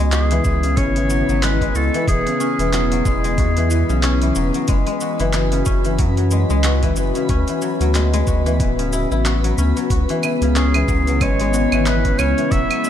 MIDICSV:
0, 0, Header, 1, 7, 480
1, 0, Start_track
1, 0, Tempo, 652174
1, 1530, Time_signature, 4, 2, 24, 8
1, 9493, End_track
2, 0, Start_track
2, 0, Title_t, "Clarinet"
2, 0, Program_c, 0, 71
2, 93, Note_on_c, 0, 68, 89
2, 569, Note_on_c, 0, 73, 109
2, 580, Note_off_c, 0, 68, 0
2, 1053, Note_on_c, 0, 71, 92
2, 1064, Note_off_c, 0, 73, 0
2, 1294, Note_on_c, 0, 69, 84
2, 1305, Note_off_c, 0, 71, 0
2, 1527, Note_off_c, 0, 69, 0
2, 1531, Note_on_c, 0, 68, 99
2, 1981, Note_off_c, 0, 68, 0
2, 2011, Note_on_c, 0, 68, 83
2, 3181, Note_off_c, 0, 68, 0
2, 7776, Note_on_c, 0, 68, 82
2, 8258, Note_on_c, 0, 73, 95
2, 8269, Note_off_c, 0, 68, 0
2, 8738, Note_on_c, 0, 71, 96
2, 8749, Note_off_c, 0, 73, 0
2, 8971, Note_on_c, 0, 73, 96
2, 8982, Note_off_c, 0, 71, 0
2, 9211, Note_on_c, 0, 76, 110
2, 9222, Note_off_c, 0, 73, 0
2, 9493, Note_off_c, 0, 76, 0
2, 9493, End_track
3, 0, Start_track
3, 0, Title_t, "Synth texture"
3, 0, Program_c, 1, 99
3, 0, Note_on_c, 1, 71, 86
3, 9493, Note_off_c, 1, 71, 0
3, 9493, End_track
4, 0, Start_track
4, 0, Title_t, "Ambient pad"
4, 0, Program_c, 2, 92
4, 0, Note_on_c, 2, 49, 78
4, 0, Note_on_c, 2, 52, 67
4, 0, Note_on_c, 2, 59, 68
4, 0, Note_on_c, 2, 64, 81
4, 1511, Note_off_c, 2, 49, 0
4, 3419, Note_off_c, 2, 64, 0
4, 3420, Note_off_c, 2, 52, 0
4, 3420, Note_off_c, 2, 59, 0
4, 3447, Note_on_c, 2, 61, 68
4, 3447, Note_on_c, 2, 66, 84
4, 3449, Note_on_c, 2, 52, 78
4, 5349, Note_off_c, 2, 61, 0
4, 5350, Note_off_c, 2, 52, 0
4, 5366, Note_on_c, 2, 59, 71
4, 7259, Note_off_c, 2, 66, 0
4, 7287, Note_on_c, 2, 49, 76
4, 7288, Note_on_c, 2, 56, 66
4, 7289, Note_on_c, 2, 64, 80
4, 9189, Note_off_c, 2, 49, 0
4, 9493, Note_off_c, 2, 56, 0
4, 9493, Note_off_c, 2, 59, 0
4, 9493, Note_off_c, 2, 64, 0
4, 9493, End_track
5, 0, Start_track
5, 0, Title_t, "Guzheng"
5, 0, Program_c, 3, 107
5, 0, Note_on_c, 3, 54, 65
5, 0, Note_on_c, 3, 56, 90
5, 0, Note_on_c, 3, 61, 90
5, 0, Note_on_c, 3, 66, 88
5, 88, Note_off_c, 3, 66, 0
5, 91, Note_on_c, 3, 66, 71
5, 231, Note_on_c, 3, 52, 95
5, 324, Note_off_c, 3, 52, 0
5, 333, Note_on_c, 3, 52, 73
5, 469, Note_on_c, 3, 49, 75
5, 487, Note_off_c, 3, 52, 0
5, 487, Note_off_c, 3, 54, 0
5, 565, Note_off_c, 3, 61, 0
5, 568, Note_on_c, 3, 61, 92
5, 710, Note_on_c, 3, 52, 70
5, 811, Note_on_c, 3, 54, 67
5, 944, Note_off_c, 3, 54, 0
5, 953, Note_on_c, 3, 54, 72
5, 1042, Note_off_c, 3, 56, 0
5, 1051, Note_on_c, 3, 56, 75
5, 1182, Note_off_c, 3, 56, 0
5, 1191, Note_on_c, 3, 56, 89
5, 1287, Note_off_c, 3, 66, 0
5, 1290, Note_on_c, 3, 66, 64
5, 1421, Note_off_c, 3, 52, 0
5, 1430, Note_on_c, 3, 52, 90
5, 1524, Note_off_c, 3, 52, 0
5, 1533, Note_on_c, 3, 52, 79
5, 1567, Note_off_c, 3, 49, 0
5, 1567, Note_off_c, 3, 54, 0
5, 1567, Note_off_c, 3, 56, 0
5, 1665, Note_on_c, 3, 49, 71
5, 1687, Note_off_c, 3, 52, 0
5, 1765, Note_off_c, 3, 61, 0
5, 1768, Note_on_c, 3, 61, 90
5, 1909, Note_on_c, 3, 52, 70
5, 2008, Note_on_c, 3, 54, 73
5, 2140, Note_off_c, 3, 54, 0
5, 2149, Note_on_c, 3, 54, 74
5, 2253, Note_on_c, 3, 56, 72
5, 2381, Note_off_c, 3, 56, 0
5, 2389, Note_on_c, 3, 56, 97
5, 2491, Note_off_c, 3, 66, 0
5, 2494, Note_on_c, 3, 66, 75
5, 2621, Note_off_c, 3, 52, 0
5, 2630, Note_on_c, 3, 52, 91
5, 2721, Note_off_c, 3, 52, 0
5, 2730, Note_on_c, 3, 52, 71
5, 2857, Note_off_c, 3, 49, 0
5, 2866, Note_on_c, 3, 49, 74
5, 2887, Note_off_c, 3, 52, 0
5, 2887, Note_off_c, 3, 54, 0
5, 2964, Note_off_c, 3, 61, 0
5, 2967, Note_on_c, 3, 61, 96
5, 3108, Note_on_c, 3, 52, 73
5, 3207, Note_on_c, 3, 54, 69
5, 3340, Note_off_c, 3, 54, 0
5, 3349, Note_on_c, 3, 54, 68
5, 3439, Note_off_c, 3, 56, 0
5, 3447, Note_on_c, 3, 56, 85
5, 3487, Note_off_c, 3, 49, 0
5, 3487, Note_off_c, 3, 52, 0
5, 3487, Note_off_c, 3, 54, 0
5, 3574, Note_off_c, 3, 56, 0
5, 3583, Note_on_c, 3, 56, 93
5, 3687, Note_off_c, 3, 66, 0
5, 3690, Note_on_c, 3, 66, 69
5, 3827, Note_on_c, 3, 52, 96
5, 3919, Note_off_c, 3, 52, 0
5, 3928, Note_on_c, 3, 52, 76
5, 4065, Note_on_c, 3, 49, 74
5, 4087, Note_off_c, 3, 52, 0
5, 4162, Note_off_c, 3, 61, 0
5, 4165, Note_on_c, 3, 61, 91
5, 4304, Note_on_c, 3, 52, 77
5, 4407, Note_on_c, 3, 54, 81
5, 4538, Note_off_c, 3, 54, 0
5, 4547, Note_on_c, 3, 54, 65
5, 4642, Note_off_c, 3, 56, 0
5, 4651, Note_on_c, 3, 56, 67
5, 4775, Note_off_c, 3, 56, 0
5, 4784, Note_on_c, 3, 56, 95
5, 4887, Note_off_c, 3, 66, 0
5, 4890, Note_on_c, 3, 66, 74
5, 5020, Note_off_c, 3, 52, 0
5, 5028, Note_on_c, 3, 52, 96
5, 5122, Note_off_c, 3, 52, 0
5, 5131, Note_on_c, 3, 52, 70
5, 5261, Note_off_c, 3, 49, 0
5, 5269, Note_on_c, 3, 49, 65
5, 5287, Note_off_c, 3, 52, 0
5, 5287, Note_off_c, 3, 54, 0
5, 5367, Note_off_c, 3, 61, 0
5, 5370, Note_on_c, 3, 61, 102
5, 5407, Note_off_c, 3, 49, 0
5, 5407, Note_off_c, 3, 56, 0
5, 5511, Note_on_c, 3, 52, 70
5, 5610, Note_on_c, 3, 54, 72
5, 5741, Note_off_c, 3, 54, 0
5, 5750, Note_on_c, 3, 54, 74
5, 5850, Note_on_c, 3, 56, 78
5, 5979, Note_off_c, 3, 56, 0
5, 5988, Note_on_c, 3, 56, 100
5, 6087, Note_off_c, 3, 66, 0
5, 6090, Note_on_c, 3, 66, 71
5, 6218, Note_off_c, 3, 52, 0
5, 6227, Note_on_c, 3, 52, 94
5, 6320, Note_off_c, 3, 52, 0
5, 6328, Note_on_c, 3, 52, 77
5, 6469, Note_on_c, 3, 49, 70
5, 6487, Note_off_c, 3, 52, 0
5, 6487, Note_off_c, 3, 54, 0
5, 6570, Note_on_c, 3, 64, 93
5, 6706, Note_off_c, 3, 64, 0
5, 6709, Note_on_c, 3, 64, 75
5, 6808, Note_off_c, 3, 66, 0
5, 6811, Note_on_c, 3, 66, 71
5, 6949, Note_on_c, 3, 54, 70
5, 7049, Note_off_c, 3, 61, 0
5, 7052, Note_on_c, 3, 61, 70
5, 7180, Note_off_c, 3, 54, 0
5, 7189, Note_on_c, 3, 54, 67
5, 7290, Note_off_c, 3, 66, 0
5, 7293, Note_on_c, 3, 66, 80
5, 7327, Note_off_c, 3, 49, 0
5, 7327, Note_off_c, 3, 54, 0
5, 7327, Note_off_c, 3, 56, 0
5, 7432, Note_on_c, 3, 52, 96
5, 7528, Note_off_c, 3, 52, 0
5, 7537, Note_on_c, 3, 52, 68
5, 7672, Note_on_c, 3, 49, 73
5, 7687, Note_off_c, 3, 52, 0
5, 7770, Note_off_c, 3, 61, 0
5, 7773, Note_on_c, 3, 61, 95
5, 7911, Note_on_c, 3, 52, 74
5, 8014, Note_on_c, 3, 54, 70
5, 8148, Note_off_c, 3, 54, 0
5, 8157, Note_on_c, 3, 54, 74
5, 8256, Note_on_c, 3, 56, 80
5, 8386, Note_off_c, 3, 56, 0
5, 8395, Note_on_c, 3, 56, 98
5, 8490, Note_off_c, 3, 66, 0
5, 8493, Note_on_c, 3, 66, 71
5, 8625, Note_off_c, 3, 52, 0
5, 8631, Note_off_c, 3, 64, 0
5, 8634, Note_on_c, 3, 52, 100
5, 8726, Note_off_c, 3, 52, 0
5, 8734, Note_on_c, 3, 52, 83
5, 8865, Note_off_c, 3, 49, 0
5, 8874, Note_on_c, 3, 49, 65
5, 8887, Note_off_c, 3, 52, 0
5, 8887, Note_off_c, 3, 54, 0
5, 8972, Note_off_c, 3, 61, 0
5, 8975, Note_on_c, 3, 61, 93
5, 9115, Note_on_c, 3, 52, 67
5, 9214, Note_on_c, 3, 54, 81
5, 9247, Note_off_c, 3, 49, 0
5, 9247, Note_off_c, 3, 52, 0
5, 9247, Note_off_c, 3, 56, 0
5, 9343, Note_off_c, 3, 54, 0
5, 9352, Note_on_c, 3, 54, 71
5, 9453, Note_on_c, 3, 56, 68
5, 9493, Note_off_c, 3, 54, 0
5, 9493, Note_off_c, 3, 56, 0
5, 9493, Note_off_c, 3, 61, 0
5, 9493, Note_off_c, 3, 66, 0
5, 9493, End_track
6, 0, Start_track
6, 0, Title_t, "Sub bass"
6, 0, Program_c, 4, 38
6, 0, Note_on_c, 4, 37, 82
6, 300, Note_off_c, 4, 37, 0
6, 331, Note_on_c, 4, 37, 84
6, 569, Note_on_c, 4, 32, 83
6, 580, Note_off_c, 4, 37, 0
6, 907, Note_off_c, 4, 32, 0
6, 949, Note_on_c, 4, 32, 79
6, 1260, Note_off_c, 4, 32, 0
6, 1288, Note_on_c, 4, 37, 96
6, 1401, Note_off_c, 4, 37, 0
6, 1528, Note_on_c, 4, 28, 95
6, 1641, Note_off_c, 4, 28, 0
6, 1906, Note_on_c, 4, 28, 78
6, 2218, Note_off_c, 4, 28, 0
6, 2249, Note_on_c, 4, 28, 81
6, 2487, Note_on_c, 4, 40, 83
6, 2498, Note_off_c, 4, 28, 0
6, 2825, Note_off_c, 4, 40, 0
6, 2867, Note_on_c, 4, 35, 76
6, 3179, Note_off_c, 4, 35, 0
6, 3208, Note_on_c, 4, 28, 96
6, 3321, Note_off_c, 4, 28, 0
6, 3448, Note_on_c, 4, 30, 96
6, 3562, Note_off_c, 4, 30, 0
6, 3827, Note_on_c, 4, 30, 83
6, 4139, Note_off_c, 4, 30, 0
6, 4170, Note_on_c, 4, 30, 85
6, 4409, Note_on_c, 4, 42, 81
6, 4420, Note_off_c, 4, 30, 0
6, 4747, Note_off_c, 4, 42, 0
6, 4786, Note_on_c, 4, 37, 82
6, 5099, Note_off_c, 4, 37, 0
6, 5128, Note_on_c, 4, 30, 98
6, 5242, Note_off_c, 4, 30, 0
6, 5368, Note_on_c, 4, 38, 99
6, 5481, Note_off_c, 4, 38, 0
6, 5744, Note_on_c, 4, 38, 74
6, 6057, Note_off_c, 4, 38, 0
6, 6090, Note_on_c, 4, 38, 81
6, 6330, Note_on_c, 4, 26, 82
6, 6341, Note_off_c, 4, 38, 0
6, 6667, Note_off_c, 4, 26, 0
6, 6708, Note_on_c, 4, 33, 80
6, 7020, Note_off_c, 4, 33, 0
6, 7050, Note_on_c, 4, 38, 97
6, 7163, Note_off_c, 4, 38, 0
6, 7288, Note_on_c, 4, 37, 103
6, 7402, Note_off_c, 4, 37, 0
6, 7666, Note_on_c, 4, 37, 78
6, 7978, Note_off_c, 4, 37, 0
6, 8009, Note_on_c, 4, 37, 83
6, 8251, Note_on_c, 4, 32, 82
6, 8262, Note_off_c, 4, 37, 0
6, 8587, Note_off_c, 4, 32, 0
6, 8627, Note_on_c, 4, 32, 79
6, 8939, Note_off_c, 4, 32, 0
6, 8974, Note_on_c, 4, 37, 94
6, 9084, Note_off_c, 4, 37, 0
6, 9212, Note_on_c, 4, 28, 100
6, 9323, Note_off_c, 4, 28, 0
6, 9493, End_track
7, 0, Start_track
7, 0, Title_t, "Drums"
7, 88, Note_on_c, 9, 39, 94
7, 88, Note_on_c, 9, 46, 59
7, 89, Note_on_c, 9, 82, 41
7, 162, Note_off_c, 9, 39, 0
7, 162, Note_off_c, 9, 46, 0
7, 162, Note_off_c, 9, 82, 0
7, 226, Note_on_c, 9, 46, 43
7, 300, Note_off_c, 9, 46, 0
7, 328, Note_on_c, 9, 82, 75
7, 330, Note_on_c, 9, 36, 91
7, 401, Note_off_c, 9, 82, 0
7, 403, Note_off_c, 9, 36, 0
7, 466, Note_on_c, 9, 46, 31
7, 467, Note_on_c, 9, 82, 30
7, 540, Note_off_c, 9, 46, 0
7, 540, Note_off_c, 9, 82, 0
7, 568, Note_on_c, 9, 46, 66
7, 568, Note_on_c, 9, 82, 44
7, 569, Note_on_c, 9, 36, 97
7, 641, Note_off_c, 9, 46, 0
7, 641, Note_off_c, 9, 82, 0
7, 643, Note_off_c, 9, 36, 0
7, 706, Note_on_c, 9, 46, 43
7, 780, Note_off_c, 9, 46, 0
7, 810, Note_on_c, 9, 82, 76
7, 883, Note_off_c, 9, 82, 0
7, 950, Note_on_c, 9, 82, 30
7, 1023, Note_off_c, 9, 82, 0
7, 1051, Note_on_c, 9, 39, 98
7, 1051, Note_on_c, 9, 46, 64
7, 1052, Note_on_c, 9, 82, 41
7, 1125, Note_off_c, 9, 39, 0
7, 1125, Note_off_c, 9, 46, 0
7, 1125, Note_off_c, 9, 82, 0
7, 1187, Note_on_c, 9, 36, 55
7, 1190, Note_on_c, 9, 46, 42
7, 1261, Note_off_c, 9, 36, 0
7, 1264, Note_off_c, 9, 46, 0
7, 1289, Note_on_c, 9, 82, 76
7, 1363, Note_off_c, 9, 82, 0
7, 1430, Note_on_c, 9, 46, 29
7, 1430, Note_on_c, 9, 82, 31
7, 1504, Note_off_c, 9, 46, 0
7, 1504, Note_off_c, 9, 82, 0
7, 1528, Note_on_c, 9, 36, 117
7, 1532, Note_on_c, 9, 46, 69
7, 1532, Note_on_c, 9, 82, 47
7, 1602, Note_off_c, 9, 36, 0
7, 1605, Note_off_c, 9, 46, 0
7, 1606, Note_off_c, 9, 82, 0
7, 1669, Note_on_c, 9, 46, 45
7, 1742, Note_off_c, 9, 46, 0
7, 1770, Note_on_c, 9, 82, 71
7, 1844, Note_off_c, 9, 82, 0
7, 1909, Note_on_c, 9, 46, 29
7, 1909, Note_on_c, 9, 82, 31
7, 1983, Note_off_c, 9, 46, 0
7, 1983, Note_off_c, 9, 82, 0
7, 2011, Note_on_c, 9, 39, 93
7, 2011, Note_on_c, 9, 46, 62
7, 2011, Note_on_c, 9, 82, 39
7, 2084, Note_off_c, 9, 39, 0
7, 2084, Note_off_c, 9, 46, 0
7, 2085, Note_off_c, 9, 82, 0
7, 2147, Note_on_c, 9, 46, 43
7, 2220, Note_off_c, 9, 46, 0
7, 2248, Note_on_c, 9, 36, 102
7, 2249, Note_on_c, 9, 82, 75
7, 2322, Note_off_c, 9, 36, 0
7, 2323, Note_off_c, 9, 82, 0
7, 2387, Note_on_c, 9, 46, 29
7, 2387, Note_on_c, 9, 82, 33
7, 2460, Note_off_c, 9, 46, 0
7, 2461, Note_off_c, 9, 82, 0
7, 2488, Note_on_c, 9, 36, 106
7, 2488, Note_on_c, 9, 46, 65
7, 2488, Note_on_c, 9, 82, 45
7, 2561, Note_off_c, 9, 46, 0
7, 2562, Note_off_c, 9, 36, 0
7, 2562, Note_off_c, 9, 82, 0
7, 2625, Note_on_c, 9, 46, 39
7, 2698, Note_off_c, 9, 46, 0
7, 2727, Note_on_c, 9, 82, 77
7, 2800, Note_off_c, 9, 82, 0
7, 2867, Note_on_c, 9, 82, 31
7, 2940, Note_off_c, 9, 82, 0
7, 2966, Note_on_c, 9, 39, 99
7, 2966, Note_on_c, 9, 46, 63
7, 2966, Note_on_c, 9, 82, 42
7, 3039, Note_off_c, 9, 39, 0
7, 3039, Note_off_c, 9, 46, 0
7, 3040, Note_off_c, 9, 82, 0
7, 3102, Note_on_c, 9, 46, 41
7, 3176, Note_off_c, 9, 46, 0
7, 3204, Note_on_c, 9, 82, 78
7, 3278, Note_off_c, 9, 82, 0
7, 3344, Note_on_c, 9, 46, 28
7, 3344, Note_on_c, 9, 82, 32
7, 3417, Note_off_c, 9, 46, 0
7, 3418, Note_off_c, 9, 82, 0
7, 3443, Note_on_c, 9, 46, 60
7, 3443, Note_on_c, 9, 82, 46
7, 3449, Note_on_c, 9, 36, 117
7, 3516, Note_off_c, 9, 46, 0
7, 3517, Note_off_c, 9, 82, 0
7, 3522, Note_off_c, 9, 36, 0
7, 3581, Note_on_c, 9, 46, 42
7, 3655, Note_off_c, 9, 46, 0
7, 3685, Note_on_c, 9, 82, 70
7, 3759, Note_off_c, 9, 82, 0
7, 3824, Note_on_c, 9, 46, 28
7, 3824, Note_on_c, 9, 82, 33
7, 3897, Note_off_c, 9, 46, 0
7, 3898, Note_off_c, 9, 82, 0
7, 3924, Note_on_c, 9, 39, 95
7, 3924, Note_on_c, 9, 46, 58
7, 3925, Note_on_c, 9, 82, 43
7, 3998, Note_off_c, 9, 39, 0
7, 3998, Note_off_c, 9, 46, 0
7, 3998, Note_off_c, 9, 82, 0
7, 4061, Note_on_c, 9, 46, 40
7, 4135, Note_off_c, 9, 46, 0
7, 4163, Note_on_c, 9, 82, 79
7, 4169, Note_on_c, 9, 36, 106
7, 4237, Note_off_c, 9, 82, 0
7, 4243, Note_off_c, 9, 36, 0
7, 4302, Note_on_c, 9, 46, 29
7, 4303, Note_on_c, 9, 82, 33
7, 4376, Note_off_c, 9, 46, 0
7, 4376, Note_off_c, 9, 82, 0
7, 4405, Note_on_c, 9, 46, 65
7, 4406, Note_on_c, 9, 82, 46
7, 4408, Note_on_c, 9, 36, 104
7, 4479, Note_off_c, 9, 46, 0
7, 4479, Note_off_c, 9, 82, 0
7, 4482, Note_off_c, 9, 36, 0
7, 4544, Note_on_c, 9, 46, 38
7, 4617, Note_off_c, 9, 46, 0
7, 4645, Note_on_c, 9, 82, 80
7, 4718, Note_off_c, 9, 82, 0
7, 4784, Note_on_c, 9, 82, 33
7, 4857, Note_off_c, 9, 82, 0
7, 4885, Note_on_c, 9, 39, 96
7, 4885, Note_on_c, 9, 46, 61
7, 4885, Note_on_c, 9, 82, 42
7, 4958, Note_off_c, 9, 39, 0
7, 4958, Note_off_c, 9, 46, 0
7, 4959, Note_off_c, 9, 82, 0
7, 5024, Note_on_c, 9, 46, 40
7, 5027, Note_on_c, 9, 36, 56
7, 5098, Note_off_c, 9, 46, 0
7, 5100, Note_off_c, 9, 36, 0
7, 5125, Note_on_c, 9, 82, 83
7, 5198, Note_off_c, 9, 82, 0
7, 5264, Note_on_c, 9, 46, 29
7, 5264, Note_on_c, 9, 82, 32
7, 5337, Note_off_c, 9, 46, 0
7, 5338, Note_off_c, 9, 82, 0
7, 5366, Note_on_c, 9, 46, 65
7, 5366, Note_on_c, 9, 82, 43
7, 5368, Note_on_c, 9, 36, 113
7, 5439, Note_off_c, 9, 46, 0
7, 5440, Note_off_c, 9, 82, 0
7, 5442, Note_off_c, 9, 36, 0
7, 5503, Note_on_c, 9, 46, 40
7, 5503, Note_on_c, 9, 82, 31
7, 5576, Note_off_c, 9, 46, 0
7, 5577, Note_off_c, 9, 82, 0
7, 5606, Note_on_c, 9, 82, 73
7, 5680, Note_off_c, 9, 82, 0
7, 5746, Note_on_c, 9, 46, 28
7, 5747, Note_on_c, 9, 82, 31
7, 5820, Note_off_c, 9, 46, 0
7, 5820, Note_off_c, 9, 82, 0
7, 5849, Note_on_c, 9, 39, 85
7, 5849, Note_on_c, 9, 46, 58
7, 5849, Note_on_c, 9, 82, 41
7, 5922, Note_off_c, 9, 39, 0
7, 5922, Note_off_c, 9, 46, 0
7, 5923, Note_off_c, 9, 82, 0
7, 5988, Note_on_c, 9, 46, 42
7, 5988, Note_on_c, 9, 82, 31
7, 6061, Note_off_c, 9, 46, 0
7, 6062, Note_off_c, 9, 82, 0
7, 6088, Note_on_c, 9, 36, 97
7, 6089, Note_on_c, 9, 82, 76
7, 6162, Note_off_c, 9, 36, 0
7, 6163, Note_off_c, 9, 82, 0
7, 6229, Note_on_c, 9, 46, 28
7, 6230, Note_on_c, 9, 82, 34
7, 6303, Note_off_c, 9, 46, 0
7, 6303, Note_off_c, 9, 82, 0
7, 6329, Note_on_c, 9, 36, 96
7, 6330, Note_on_c, 9, 46, 63
7, 6330, Note_on_c, 9, 82, 44
7, 6403, Note_off_c, 9, 36, 0
7, 6403, Note_off_c, 9, 46, 0
7, 6404, Note_off_c, 9, 82, 0
7, 6470, Note_on_c, 9, 46, 38
7, 6471, Note_on_c, 9, 82, 31
7, 6544, Note_off_c, 9, 46, 0
7, 6544, Note_off_c, 9, 82, 0
7, 6571, Note_on_c, 9, 82, 81
7, 6645, Note_off_c, 9, 82, 0
7, 6710, Note_on_c, 9, 82, 33
7, 6783, Note_off_c, 9, 82, 0
7, 6811, Note_on_c, 9, 39, 93
7, 6811, Note_on_c, 9, 46, 62
7, 6812, Note_on_c, 9, 82, 42
7, 6885, Note_off_c, 9, 39, 0
7, 6885, Note_off_c, 9, 46, 0
7, 6885, Note_off_c, 9, 82, 0
7, 6950, Note_on_c, 9, 46, 39
7, 7023, Note_off_c, 9, 46, 0
7, 7052, Note_on_c, 9, 82, 77
7, 7126, Note_off_c, 9, 82, 0
7, 7189, Note_on_c, 9, 46, 28
7, 7190, Note_on_c, 9, 82, 33
7, 7263, Note_off_c, 9, 46, 0
7, 7263, Note_off_c, 9, 82, 0
7, 7289, Note_on_c, 9, 36, 118
7, 7291, Note_on_c, 9, 46, 64
7, 7291, Note_on_c, 9, 82, 47
7, 7363, Note_off_c, 9, 36, 0
7, 7364, Note_off_c, 9, 46, 0
7, 7364, Note_off_c, 9, 82, 0
7, 7427, Note_on_c, 9, 46, 44
7, 7500, Note_off_c, 9, 46, 0
7, 7530, Note_on_c, 9, 75, 74
7, 7531, Note_on_c, 9, 82, 74
7, 7604, Note_off_c, 9, 75, 0
7, 7604, Note_off_c, 9, 82, 0
7, 7668, Note_on_c, 9, 46, 26
7, 7668, Note_on_c, 9, 82, 31
7, 7741, Note_off_c, 9, 46, 0
7, 7742, Note_off_c, 9, 82, 0
7, 7771, Note_on_c, 9, 39, 89
7, 7771, Note_on_c, 9, 46, 60
7, 7771, Note_on_c, 9, 82, 41
7, 7844, Note_off_c, 9, 39, 0
7, 7844, Note_off_c, 9, 46, 0
7, 7845, Note_off_c, 9, 82, 0
7, 7907, Note_on_c, 9, 46, 40
7, 7907, Note_on_c, 9, 75, 78
7, 7981, Note_off_c, 9, 46, 0
7, 7981, Note_off_c, 9, 75, 0
7, 8010, Note_on_c, 9, 36, 104
7, 8011, Note_on_c, 9, 82, 77
7, 8084, Note_off_c, 9, 36, 0
7, 8084, Note_off_c, 9, 82, 0
7, 8150, Note_on_c, 9, 46, 30
7, 8151, Note_on_c, 9, 82, 34
7, 8224, Note_off_c, 9, 46, 0
7, 8224, Note_off_c, 9, 82, 0
7, 8250, Note_on_c, 9, 36, 99
7, 8250, Note_on_c, 9, 46, 62
7, 8250, Note_on_c, 9, 75, 76
7, 8251, Note_on_c, 9, 82, 46
7, 8324, Note_off_c, 9, 36, 0
7, 8324, Note_off_c, 9, 46, 0
7, 8324, Note_off_c, 9, 75, 0
7, 8324, Note_off_c, 9, 82, 0
7, 8387, Note_on_c, 9, 46, 40
7, 8461, Note_off_c, 9, 46, 0
7, 8491, Note_on_c, 9, 82, 78
7, 8565, Note_off_c, 9, 82, 0
7, 8628, Note_on_c, 9, 75, 76
7, 8628, Note_on_c, 9, 82, 31
7, 8701, Note_off_c, 9, 75, 0
7, 8702, Note_off_c, 9, 82, 0
7, 8730, Note_on_c, 9, 39, 95
7, 8730, Note_on_c, 9, 46, 58
7, 8730, Note_on_c, 9, 82, 44
7, 8803, Note_off_c, 9, 39, 0
7, 8803, Note_off_c, 9, 46, 0
7, 8804, Note_off_c, 9, 82, 0
7, 8868, Note_on_c, 9, 46, 38
7, 8870, Note_on_c, 9, 36, 60
7, 8942, Note_off_c, 9, 46, 0
7, 8943, Note_off_c, 9, 36, 0
7, 8971, Note_on_c, 9, 75, 83
7, 8971, Note_on_c, 9, 82, 77
7, 9045, Note_off_c, 9, 75, 0
7, 9045, Note_off_c, 9, 82, 0
7, 9111, Note_on_c, 9, 46, 27
7, 9112, Note_on_c, 9, 82, 30
7, 9185, Note_off_c, 9, 46, 0
7, 9185, Note_off_c, 9, 82, 0
7, 9212, Note_on_c, 9, 36, 108
7, 9213, Note_on_c, 9, 46, 67
7, 9213, Note_on_c, 9, 82, 43
7, 9286, Note_off_c, 9, 36, 0
7, 9286, Note_off_c, 9, 46, 0
7, 9287, Note_off_c, 9, 82, 0
7, 9352, Note_on_c, 9, 46, 42
7, 9352, Note_on_c, 9, 75, 78
7, 9425, Note_off_c, 9, 46, 0
7, 9425, Note_off_c, 9, 75, 0
7, 9453, Note_on_c, 9, 82, 69
7, 9493, Note_off_c, 9, 82, 0
7, 9493, End_track
0, 0, End_of_file